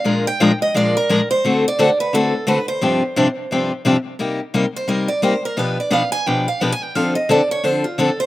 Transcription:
X:1
M:4/4
L:1/16
Q:"Swing" 1/4=174
K:Cm
V:1 name="Steel-string acoustic guitar"
f2 g4 e2 d2 B4 c2- | c2 d4 =B2 =A4 B2 c2- | c12 z4 | z6 c2 B2 d2 c2 B2 |
=B2 d2 f2 a2 g2 f2 (3g2 a2 g2 | f2 e2 d2 _d2 c2 F2 =A2 c2 |]
V:2 name="Steel-string acoustic guitar"
[B,,F,A,DFB]2 z2 [B,,F,A,DFB] z3 [B,,F,A,DFB]2 z2 [B,,F,A,DFB] z3 | [D,=A,C^F=A]2 z2 [D,A,CFA] z3 [D,A,CFA]2 z2 [D,A,CFA] z3 | [G,,C,F,CDG]2 z2 [G,,C,F,CDG] z3 [G,,C,F,CDG]2 z2 [G,,C,F,CDG] z3 | [C,G,B,EG]2 z2 [C,G,B,EG] z3 [C,G,B,EG]2 z2 [C,G,B,EG] z3 |
[=B,,F,=B,DG=B]2 z2 [B,,F,B,DGB] z3 [B,,F,B,DGB]2 z2 [B,,F,B,DGB] z3 | [D,F,CD=A]2 z2 [D,F,CDA] z3 [D,F,CDA]2 z2 [D,F,CDA] z3 |]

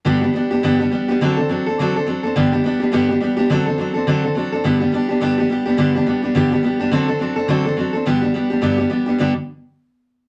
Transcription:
X:1
M:4/4
L:1/8
Q:"Swing" 1/4=211
K:G
V:1 name="Steel-string acoustic guitar"
[G,,D,G,B,DG] [G,B,DG] [G,B,DG] [G,B,DG] [G,,D,G,B,DG] [G,B,DG] [G,B,DG] [G,B,DG] | [D,F,CDA] [CDA] [F,CDA] [CDA] [D,F,CDA] [CDA] [F,CDA] [CDA] | [G,,D,G,B,DG] [G,B,DG] [G,B,DG] [G,B,DG] [G,,D,G,B,DG] [G,B,DG] [G,B,DG] [G,B,DG] | [D,F,CDA] [CDA] [F,CDA] [CDA] [D,F,CDA] [CDA] [F,CDA] [CDA] |
[G,,D,G,B,DG] [G,B,DG] [G,B,DG] [G,B,DG] [G,,D,G,B,DG] [G,B,DG] [G,B,DG] [G,B,DG] | [G,,D,G,B,DG] [G,B,DG] [G,B,DG] [G,B,DG] [G,,D,G,B,DG] [G,B,DG] [G,B,DG] [G,B,DG] | [D,F,CDA] [CDA] [F,CDA] [CDA] [D,F,CDA] [CDA] [F,CDA] [CDA] | [G,,D,G,B,DG] [G,B,DG] [G,B,DG] [G,B,DG] [G,,D,G,B,DG] [G,B,DG] [G,B,DG] [G,B,DG] |
[G,,D,G,B,DG] z6 z |]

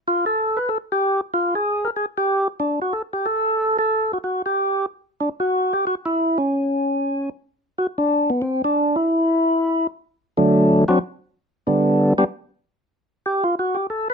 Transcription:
X:1
M:4/4
L:1/8
Q:"Swing" 1/4=187
K:G
V:1 name="Tonewheel organ"
=F A2 B A G2 z | =F ^G2 _B G =G2 z | D F A G A3 A- | A F F G3 z2 |
D F2 G F E2 ^C- | ^C4- C z3 | F D2 B, C D2 E- | E4- E z3 |
[D,F,A,D]3 [F,CDF] z4 | [D,G,B,D]3 [G,B,DG] z4 | z2 G =F ^F G A B |]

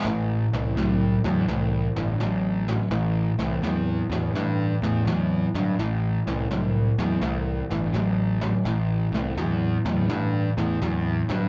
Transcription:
X:1
M:4/4
L:1/8
Q:"Swing" 1/4=84
K:Am
V:1 name="Distorted electric guitar" clef=bass
[A,,E,] [A,,E,] [A,,^F,] [A,,F,] [A,,E,] [A,,E,] [A,,F,] [A,,F,] | [A,,E,] [A,,E,] [A,,^F,] [A,,F,] [A,,E,] [A,,E,] [A,,F,] [A,,F,] | [A,,E,] [A,,E,] [A,,^F,] [A,,F,] [A,,E,] [A,,E,] [A,,F,] [A,,F,] | [A,,E,] [A,,E,] [A,,^F,] [A,,F,] [A,,E,] [A,,E,] [A,,F,] [A,,F,] |]
V:2 name="Picked electric bass" clef=bass
A,,, C,, C,, E,, C,, G,,, A,,,2 | A,,, C,, E,, E,, G,, E,, E,, G,, | A,,, C,, C,, E,, C,, G,,, A,,,2 | A,,, C,, E,, E,, G,, E,, E,, G,, |]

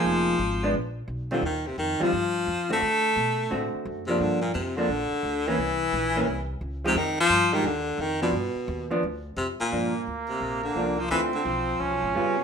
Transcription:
X:1
M:4/4
L:1/8
Q:"Swing" 1/4=174
K:Gphr
V:1 name="Trumpet"
z8 | z8 | z8 | z8 |
z8 | z8 | z8 | [K:Gm] B,8 |
C4 ^C4 |]
V:2 name="Hollow-body jazz guitar"
[F,B,EA]2 z [A,=B,D] z3 [E,G,CF] | z3 [E,G,CF] z3 [D,=A,C^F] | z4 [D,=A,C^F]3 [=F,B,D]- | [F,B,D]2 z [F,B,D] z3 [=E,B,_D] |
z3 [=E,B,_D] z3 [F,A,_EG] | z3 [F,A,EG] z3 [F,=B,D] | z3 [F,=B,D] z4 | [K:Gm] [F,B,D] z4 z [F,B,D] z |
[D,A,CF] z4 z [G,=B,^E] z |]
V:3 name="Baritone saxophone" clef=bass
F,4- F, z2 D, | E, C, E, F,4 =A,- | =A,4- A, z2 C, | D, B,, C, D,4 =E,- |
=E,4- E, z2 C, | E, F,2 E, D,2 E, =B,,- | =B,,3 z3 C, _B,,- | [K:Gm] B,,2 z C,2 D,2 F, |
=E, D, F,4 ^C, =B,, |]
V:4 name="Upright bass" clef=bass
F,,,2 A,,,2 B,,,2 =B,,,2 | E,,2 F,, z G,,2 F,,2 | D,2 =B,,2 =A,, z ^F,,2 | G,,2 F,,2 B,,, z D,,2 |
C,,2 B,,,2 C,,2 _D,,2 | F,,2 G,,2 E,,2 F,,2 | G,, z E,,2 D,,2 F,, z | [K:Gm] G,,2 D,,2 B,,,2 C,,2 |
D,,2 =B,,,2 (3^C,, B,,, ^G,,, ^E,,2 |]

